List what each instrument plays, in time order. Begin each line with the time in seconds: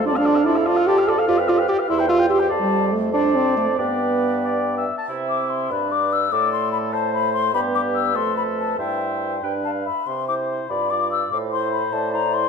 Already playing: bassoon F2
0.05 french horn D4, clarinet F4, oboe D5, flute A5
0.12 french horn C4, clarinet A4, oboe F5
0.17 french horn D4, flute F5
0.26 clarinet F4, oboe D5, flute A5
0.35 clarinet A4, oboe F5, flute F5
0.46 french horn E4, clarinet F4, oboe D5, flute A5
0.56 clarinet A4, oboe F5, flute F5
0.66 clarinet F4, french horn F4, oboe D5, flute A5
0.77 clarinet A4, oboe F5, flute F5
0.87 clarinet F4, french horn G4, oboe D5, flute A5
0.97 clarinet A4, flute F5, oboe F5
1.07 clarinet F4, french horn A4, oboe D5, flute A5
1.18 clarinet A4, oboe F5, flute F5
1.28 bassoon F2, french horn F4, clarinet G4, oboe D5, flute F5
1.38 clarinet B4, oboe F5, flute G5
1.48 french horn F4, clarinet G4, oboe D5, flute F5
1.58 clarinet B4, oboe F5, flute G5
1.68 french horn G4, clarinet G4, oboe D5, flute F5
1.79 clarinet B4, oboe F5, flute G5
1.89 bassoon E2, french horn E4, clarinet G4, oboe E5, flute C6
1.99 clarinet C5, oboe G5, flute G5
2.08 french horn F4, clarinet G4, oboe E5, flute C6
2.19 clarinet C5, flute G5, oboe G5
2.30 french horn G4, clarinet G4, oboe E5, flute C6
2.39 clarinet C5, oboe G5, flute G5
2.49 bassoon F2, clarinet C5, oboe D5, flute A5
2.61 french horn G3
2.93 french horn A3
3.13 french horn D4, clarinet C5, oboe D5, flute A5
3.36 french horn C4
3.57 french horn A3
3.78 bassoon G2, french horn B3, clarinet B4, oboe D5, flute G5
4.44 oboe D5
4.77 oboe E5
4.98 oboe A5
5.08 bassoon C3, french horn C4, oboe E4, clarinet E5
5.29 flute D6
5.50 flute C6
5.71 bassoon G2, french horn D4, oboe B4, clarinet D5, flute B5
5.92 flute D6
6.13 flute E6
6.32 bassoon A2, french horn A3, oboe A4, clarinet D5, flute D6
6.53 flute C6
6.72 flute B5
6.93 oboe C5, clarinet C5, flute A5
7.13 flute B5
7.33 flute C6
7.54 bassoon G2, french horn B3, oboe G4, clarinet B4, flute B5
7.75 flute D6
7.95 flute E6
8.15 bassoon F2, french horn A3, oboe A4, flute C6
8.37 flute B5
8.59 flute A5
8.79 bassoon G2, french horn E4, oboe C5, clarinet E5, flute G5
9.43 bassoon G2, french horn D4, oboe B4, clarinet G5
9.64 clarinet F5, flute A5
9.86 clarinet E5, flute B5
10.07 bassoon C3, flute C6
10.28 french horn E4, oboe C5, flute D6
10.49 flute C6
10.69 bassoon G2, french horn F4, oboe D5, clarinet D5, flute B5
10.90 french horn F4, oboe D5, flute D6
11.12 flute E6
11.31 bassoon A2, clarinet C5, flute D6
11.52 french horn E4, oboe C5, flute C6
11.72 flute B5
11.93 bassoon A2, clarinet D5, flute A5
12.13 french horn E4, oboe C5, flute A#5
12.34 flute C6